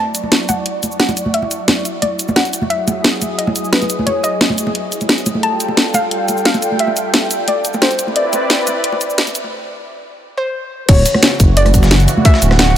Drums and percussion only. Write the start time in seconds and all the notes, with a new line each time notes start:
0.15 closed hi-hat, cabasa
0.23 muted conga
0.32 snare, closed hi-hat
0.49 closed hi-hat, muted conga, cabasa
0.66 closed hi-hat
0.83 closed hi-hat, muted conga, cabasa
0.92 cabasa
1.00 snare, closed hi-hat
1.09 closed hi-hat, muted conga, cabasa
1.17 closed hi-hat, cabasa
1.26 high conga
1.34 closed hi-hat
1.42 muted conga
1.51 closed hi-hat, cabasa
1.68 snare, closed hi-hat, muted conga
1.85 closed hi-hat, cabasa
2.02 closed hi-hat, muted conga
2.19 closed hi-hat, cabasa
2.28 muted conga, cabasa
2.36 snare, closed hi-hat
2.45 closed hi-hat, cabasa
2.53 closed hi-hat, cabasa
2.62 muted conga, high conga
2.70 closed hi-hat
2.87 closed hi-hat, muted conga, cabasa
3.04 snare, closed hi-hat
3.22 closed hi-hat, muted conga, cabasa
3.39 closed hi-hat
3.47 muted conga
3.56 closed hi-hat, cabasa
3.65 cabasa
3.73 snare, closed hi-hat
3.82 closed hi-hat, muted conga, cabasa
3.90 closed hi-hat, cabasa
3.99 high conga
4.07 closed hi-hat, muted conga
4.24 closed hi-hat, cabasa
4.41 snare, closed hi-hat, muted conga
4.50 high conga
4.58 closed hi-hat, cabasa
4.67 muted conga
4.75 closed hi-hat
4.92 closed hi-hat, cabasa
5.01 closed hi-hat, muted conga, cabasa
5.09 snare, closed hi-hat
5.18 closed hi-hat, cabasa
5.26 closed hi-hat, muted conga, cabasa
5.35 high conga
5.43 closed hi-hat
5.60 closed hi-hat, cabasa
5.68 muted conga
5.77 snare, closed hi-hat
5.94 closed hi-hat, muted conga, cabasa
6.11 closed hi-hat
6.28 closed hi-hat, muted conga, cabasa
6.37 cabasa
6.45 snare, closed hi-hat
6.54 closed hi-hat, muted conga, cabasa
6.62 closed hi-hat, cabasa
6.72 high conga
6.79 closed hi-hat
6.87 muted conga
6.97 closed hi-hat, cabasa
7.14 snare, closed hi-hat, muted conga
7.31 closed hi-hat, cabasa
7.47 closed hi-hat, muted conga
7.65 closed hi-hat, cabasa
7.73 muted conga, cabasa
7.82 snare, closed hi-hat
7.91 closed hi-hat, cabasa
7.99 closed hi-hat, cabasa
8.07 muted conga, high conga
8.16 closed hi-hat
8.33 closed hi-hat, muted conga, cabasa
8.50 snare, closed hi-hat
8.67 closed hi-hat, muted conga, cabasa
8.84 closed hi-hat
8.92 muted conga
9.01 closed hi-hat, cabasa
9.10 cabasa
9.18 snare, closed hi-hat
9.27 closed hi-hat, muted conga, cabasa
9.35 closed hi-hat, cabasa
9.44 high conga
10.89 kick, closed hi-hat, crash
11.06 closed hi-hat, cabasa
11.14 cross-stick, muted conga
11.23 snare, closed hi-hat
11.40 kick, closed hi-hat, cabasa
11.57 closed hi-hat
11.66 cross-stick, closed hi-hat, muted conga
11.74 kick, closed hi-hat, cabasa
11.83 snare, cabasa
11.91 snare, closed hi-hat
12.00 closed hi-hat, cabasa
12.08 closed hi-hat, cabasa
12.17 high conga
12.25 kick, closed hi-hat
12.34 snare
12.42 closed hi-hat, cabasa
12.51 cross-stick, snare, muted conga
12.59 snare, closed hi-hat